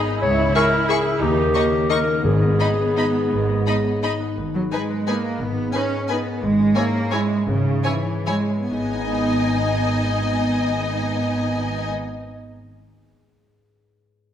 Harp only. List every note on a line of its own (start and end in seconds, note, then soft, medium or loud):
0.00 0.24 G#2 soft
0.00 0.24 D#4 soft
0.00 0.88 G#4 soft
0.00 0.24 D#5 soft
0.07 0.24 B3 soft
0.23 1.22 C#3 soft
0.38 0.71 E5 soft
0.55 0.84 D#5 soft
0.73 1.22 E5 soft
0.89 1.22 G#4 soft
1.05 2.06 C#4 soft
1.21 2.25 D#3 soft
1.37 1.71 D#5 soft
1.54 1.84 C#5 soft
1.72 2.40 D#5 soft
1.89 2.95 D#4 soft
2.07 2.25 C#4 soft
2.24 3.30 G#2 soft
2.42 2.77 D#5 soft
2.60 2.91 C#5 soft
2.78 3.47 D#5 soft
3.14 4.19 B3 soft
3.31 4.37 G#2 soft
3.48 3.84 D#5 soft
3.67 3.97 C#5 soft
3.85 4.70 D#5 soft
4.03 6.43 D#4 soft
4.20 4.53 B3 soft
4.38 5.40 G#2 soft
4.54 5.56 B3 soft
4.71 5.07 D#5 soft
4.90 5.24 B4 soft
5.08 5.73 D#5 soft
5.25 5.91 B4 soft
5.41 6.41 G#2 soft
5.57 6.43 B3 soft
5.74 6.08 D#5 soft
5.92 6.25 B4 soft
6.10 6.43 D#5 soft
6.27 6.43 B4 soft
6.42 7.46 G#2 soft
6.58 7.65 C#4 soft
6.76 7.30 C#5 soft
6.95 8.05 E4 soft
7.13 8.26 E5 soft
7.31 7.84 C#5 soft
7.47 8.69 G#2 soft
7.66 8.72 C#4 soft
7.85 8.48 C#5 soft
8.07 8.72 E4 soft
8.27 8.72 E5 soft
8.49 8.72 C#5 soft
8.70 12.60 G#2 soft
8.77 12.27 G#3 soft
8.84 12.34 B3 soft
8.91 12.41 D#4 soft
8.98 12.48 D#5 soft